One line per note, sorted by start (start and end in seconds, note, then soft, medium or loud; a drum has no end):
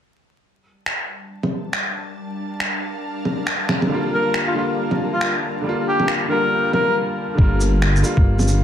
0.43 6.95 G3 medium
0.58 6.95 A5 medium
0.79 6.96 D4 medium
0.86 finger snap medium
1.43 low bongo soft
1.53 6.95 A#4 medium
1.61 6.95 F5 medium
1.73 finger snap medium
2.60 finger snap loud
3.25 low bongo soft
3.47 finger snap medium
3.69 finger snap medium
3.69 low bongo soft
3.82 low bongo medium
3.87 4.52 D3 medium
3.87 4.53 G3 medium
3.92 4.55 A#3 medium
3.92 4.56 F4 medium
4.13 4.36 A#4 medium
4.34 finger snap medium
4.47 4.53 F4 medium
4.54 4.68 D3 medium
4.54 4.69 G3 medium
4.54 4.70 A#3 medium
4.54 4.65 F4 medium
4.58 4.70 F4 medium
4.91 low bongo soft
5.13 5.35 F4 medium
5.21 finger snap loud
5.61 6.26 D3 medium
5.61 6.27 G3 medium
5.66 6.29 A#3 medium
5.66 6.30 F4 medium
5.87 6.10 G4 medium
6.00 low bongo soft
6.08 finger snap medium
6.28 6.42 D3 medium
6.28 6.43 G3 medium
6.28 6.44 A#3 medium
6.28 6.44 F4 medium
6.28 6.72 A#4 medium
6.73 6.95 A#4 medium
6.73 low bongo soft
7.34 8.03 G1 medium
7.34 8.00 D3 medium
7.34 8.01 G3 medium
7.38 8.02 A#3 medium
7.38 8.04 F4 medium
7.38 kick loud
7.61 shaker medium
7.82 finger snap medium
7.96 shaker soft
8.02 8.16 D3 medium
8.02 8.16 G3 medium
8.02 8.17 A#3 medium
8.02 8.18 F4 medium
8.02 shaker medium
8.17 8.64 G1 medium
8.17 kick loud
8.39 low bongo soft
8.39 shaker soft
8.48 shaker medium